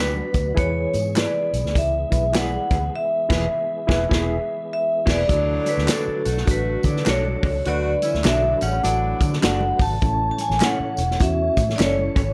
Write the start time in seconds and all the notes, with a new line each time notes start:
Already playing: D2 F#3 B3 D4 F#4 B4
0.00 D4 F#4 B4
0.16 high conga
0.34 D2, kick, closed hi-hat, tambourine
0.55 E2 E3 G#3 B3 E4 G#4 B4 C#5, kick, closed hi-hat, muted conga
0.94 G#2, closed hi-hat, tambourine, muted conga
1.15 B3 E4 G#4 B4 D5, snare, clap, closed hi-hat, tambourine, high conga
1.53 B1, closed hi-hat, tambourine
1.64 D2, snare
1.75 C#2 E4 G#4 D5 E5, kick, closed hi-hat, tambourine, muted conga
2.10 B1 E4 G#4 B4, kick, closed hi-hat, tambourine, muted conga
2.33 B3 E4 G#4 B4 D5, snare, clap, closed hi-hat, tambourine, high conga
2.37 F#5
2.52 high conga
2.70 D2 B3 E4 G#4 B4, kick, closed hi-hat, tambourine
2.93 B3 E5
3.29 E1 E3 B3 E4 G#4 B4, kick, snare, crash
3.87 E1 B3 E4 G#4 B4, kick, snare
4.09 E1 B3 E4 G#4 B4, kick, snare
4.73 E5
5.06 E1 B3 E4 G#4 B4, kick, snare, crash
5.10 D5
5.28 D2 A2 D3 F#3 A3 D4 F#4 A4, kick, closed hi-hat, muted conga
5.66 B4, closed hi-hat, tambourine, muted conga
5.78 D2, snare
5.86 D4 F#4 A4 B4 D5, snare, clap, closed hi-hat, tambourine, high conga
5.92 A4
6.08 muted fingered electric bass stroke
6.24 B1 D3 A3 F#4, closed hi-hat, tambourine
6.37 snare
6.45 A1 D4 F#4 A4, kick, closed hi-hat, tambourine, muted conga
6.51 B4
6.83 A2 D3 F#3 D4, kick, closed hi-hat, tambourine, muted conga, low conga
6.96 snare
7.06 B1 D4 F#4 A4 C#5 D5, snare, clap, closed hi-hat, tambourine, high conga
7.25 high conga
7.43 C#2 D4 F#4 A4 D5, kick, open hi-hat
7.64 D2 D3 A3 D4 F#4 B4 D5, closed hi-hat, muted conga
8.02 E3 C#4 E4, closed hi-hat, tambourine, muted conga
8.14 D2, snare
8.24 B1 A2 F#3 D4 F#4 A4 D5 E5, snare, clap, closed hi-hat, tambourine, high conga
8.61 A1 C#3 A3 C#4 F#5, closed hi-hat, tambourine
8.83 A1 A2 F#3 D4 F#4 A4, closed hi-hat, tambourine, muted conga
9.20 D3, kick, closed hi-hat, tambourine, muted conga, low conga
9.33 snare
9.41 F#1 D4 F#4 A4 D5 F#5, snare, clap, closed hi-hat, tambourine, high conga
9.61 high conga
9.79 G#1 A5, kick, open hi-hat, tambourine
10.01 A1 A2 E3 C#4 E4 A4 C#5, kick, closed hi-hat, tambourine, muted conga
10.31 A5
10.38 G#5, closed hi-hat, tambourine, muted conga
10.50 A1, snare
10.60 C#4 E4 A4 C#5 F#5, snare, clap, closed hi-hat, tambourine, high conga
10.80 muted fingered electric bass stroke
10.97 E1, closed hi-hat, tambourine
11.11 snare
11.19 E2 C#4 E4 F#4 E5, kick, closed hi-hat, tambourine, muted conga
11.57 A2, kick, closed hi-hat, tambourine, low conga
11.70 snare
11.76 F#1 C#4 E4 D5, clap, closed hi-hat, tambourine
11.80 A4 C#5, snare, high conga
11.99 high conga
12.16 G#1 C#4 E4 A4 C#5, kick, closed hi-hat, tambourine